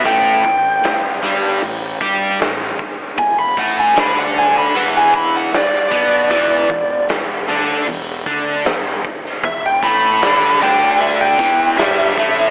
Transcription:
0.05 A1 A2 A3 G5, kick, open hi-hat
0.44 A1 A2, kick
0.84 A1 A2, snare, open hi-hat
1.22 G1 G2 G3
1.61 A1 A2, open hi-hat
2.01 G2 G3 G4, kick
2.40 A1 A2, snare, open hi-hat
2.62 snare
2.79 kick
3.18 E1 E2 G#5, kick, open hi-hat
3.38 B5
3.57 A1 A2 A3 F#5, kick
3.79 G#5
3.95 D2 D3 D4, snare, open hi-hat
4.00 B5
4.19 F#5
4.38 G#5
4.58 B5
4.74 E1 E2 E3 F#5, open hi-hat
4.97 G#5
5.14 B5, kick
5.36 F#5
5.53 D5, muted distorted electric guitar stroke, muted fingered electric bass stroke, snare, open hi-hat
5.74 snare
5.92 B1 B2 B3, kick
6.30 E1 E2 E3, kick, open hi-hat
6.70 E1 E2, kick
7.09 E1 E2, snare, open hi-hat
7.48 D2 D3 D4
7.87 E1 E2, open hi-hat
8.26 D2 D3 D4, kick
8.65 E1 E2, snare, open hi-hat
8.86 snare
9.05 kick
9.25 snare
9.43 E1 E2 E5, kick, open hi-hat
9.66 G5
9.83 A1 A2 A3 B5, kick
10.22 D2 D3 D4, snare, open hi-hat
10.61 D2 D3 D4 G5
11.00 E5, open hi-hat
11.21 G5
11.39 E2 E3, kick
11.78 G1 G2 G3 E5, snare, open hi-hat
12.17 A1 A2 A3, kick

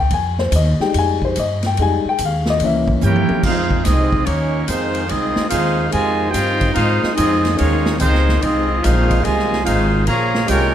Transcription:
Already playing: C#2
0.00 G5
0.10 F2 G#5, ride
0.39 C5, snare
0.52 D#2 D#5, hi-hat pedal, ride
0.80 G3 G#3 D#4 G5, muted upright bass stroke, snare
0.94 F2, ride
0.98 G#5
1.22 C5, kick
1.36 G2 D#5, hi-hat pedal, ride
1.62 G5, snare, ride
1.77 F2 G3 G#3 D#4, ride
1.82 G#5
2.05 G5, muted upright bass stroke
2.18 D#2, hi-hat pedal, ride
2.25 F5
2.46 snare
2.50 D#5
2.60 C2 E3 A#3 C#4, ride
2.65 E5
2.88 kick
3.01 G2 A#3 E4 G4 A#4 C#5 G5, hi-hat pedal, high tom
3.16 high tom
3.29 muted upright bass stroke, high tom
3.43 F2 D#3 F3 G#3 C4 D#4 F4 G#4 C5 F5, kick, snare, crash
3.71 kick
3.84 C2 G#3 C4 D#4 F4 G#4 D#5, snare, hi-hat pedal, ride
4.13 kick
4.25 D#2 A#3 C#4 D#4 G4 C#5, ride
4.65 F2 D#3 G#3 C4 D#4 F4 A#4 C5, hi-hat pedal, ride
4.95 ride
5.06 G#3 C4 D#4 F4 G#4 D#5, ride
5.11 C2
5.36 muted upright bass stroke, snare
5.48 D#2 G#3 C4 D#4 F4 G#4 C5 F5, hi-hat pedal, ride
5.89 C3 D#3 G#3 F4 D#5 G#5, ride
5.93 F2 C5
6.31 G2 C4 D#4 F4 G4 C5 D#5 G5, hi-hat pedal, ride
6.61 kick, ride
6.72 G#3 C4 D#4 F4 G#4 C5 F5, ride
6.76 G#2
7.03 muted upright bass stroke, snare
7.13 G#3 C4 D#4 F4 G#4 D#5, hi-hat pedal, ride
7.18 F2
7.45 snare, ride
7.55 D#3 G#3 C#4 D#4 F4 C#5, ride
7.61 D#2
7.86 snare
7.98 C#2 D#3 G#3 C4 D#4 F4 C5, hi-hat pedal, ride
8.15 snare
8.29 snare
8.40 C2 G#3 C4 D#4 F4 G#4 D#5, ride
8.80 G#3 C4 D#4 F4 C5, hi-hat pedal, ride
8.84 A#1 G#4 F5, snare
9.11 kick, ride
9.24 C2 C3 D#3 G#3 F4 C5 D#5 G#5, ride
9.39 snare
9.53 snare
9.63 G#1 G#3 C4 D#4 F4 G#4 C5 F5, hi-hat pedal, ride
10.05 A#1 A#2 C#3 F3 A#3 F4 G#4 C#5 F5 A#5, ride
10.35 snare
10.45 G#3 C#4 G4, hi-hat pedal, ride
10.49 C2 F4 A#4 C#5 G5

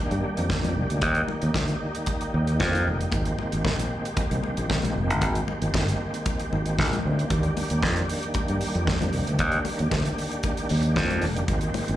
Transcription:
Already playing: D#3 G3 A#3 D4 G4
0.11 G2, closed hi-hat
0.37 F2, closed hi-hat
0.49 kick, snare, high conga
0.63 F2, closed hi-hat, high conga
0.76 C2
0.90 D2, closed hi-hat
1.01 D#2 D#4, kick, closed hi-hat, muted conga
1.15 closed hi-hat
1.28 muted conga
1.42 D#2, closed hi-hat
1.54 D2, kick, snare, high conga
1.68 closed hi-hat
1.95 closed hi-hat
2.06 kick, closed hi-hat, muted conga
2.21 closed hi-hat
2.34 D#2
2.47 closed hi-hat
2.60 F2, kick, snare, high conga
2.73 closed hi-hat, high conga
2.86 F1
3.01 closed hi-hat
3.11 G#1 G#3 C4, kick, closed hi-hat, muted conga
3.25 closed hi-hat
3.39 muted conga
3.52 G#1, closed hi-hat
3.65 A#1, kick, snare, high conga
3.79 closed hi-hat
4.05 closed hi-hat
4.17 kick, closed hi-hat, muted conga
4.31 C2, closed hi-hat
4.43 muted conga
4.57 A#1, closed hi-hat
4.69 kick, snare, high conga
4.83 A#1, closed hi-hat, high conga
4.96 F1
5.10 G1, closed hi-hat
5.21 G#1, kick, closed hi-hat, muted conga
5.35 closed hi-hat
5.48 muted conga
5.62 G#1, closed hi-hat
5.74 G1, kick, snare, high conga
5.88 closed hi-hat
6.14 closed hi-hat
6.26 kick, closed hi-hat, muted conga
6.39 closed hi-hat
6.53 G#1, muted conga
6.66 closed hi-hat
6.79 A#1, kick, snare, high conga
6.93 closed hi-hat, high conga
7.05 D2
7.19 closed hi-hat
7.30 D#2 D#3 G3 D4, kick, closed hi-hat, muted conga
7.43 closed hi-hat
7.57 open hi-hat, muted conga
7.70 D#2, closed hi-hat
7.83 F2, kick, snare, high conga
7.97 closed hi-hat
8.09 open hi-hat
8.23 closed hi-hat
8.34 kick, closed hi-hat, muted conga
8.48 G2, closed hi-hat
8.61 open hi-hat
8.75 F2, closed hi-hat
8.87 kick, snare, high conga
9.01 F2, closed hi-hat, high conga
9.13 C2, open hi-hat
9.27 D2, closed hi-hat
9.39 D#2, kick, closed hi-hat, muted conga
9.52 closed hi-hat
9.65 open hi-hat, muted conga
9.79 D#2, closed hi-hat
9.91 D2, kick, snare, high conga
10.05 closed hi-hat
10.18 open hi-hat
10.32 closed hi-hat
10.43 kick, closed hi-hat, muted conga
10.57 closed hi-hat
10.69 D#2, open hi-hat, muted conga
10.83 closed hi-hat
10.96 F2, kick, snare, high conga
11.10 closed hi-hat, high conga
11.22 F1, open hi-hat
11.37 closed hi-hat
11.47 G#1 G#3 A#3 C4 G4, kick, closed hi-hat, muted conga
11.61 closed hi-hat
11.74 open hi-hat, muted conga
11.88 G#1, closed hi-hat

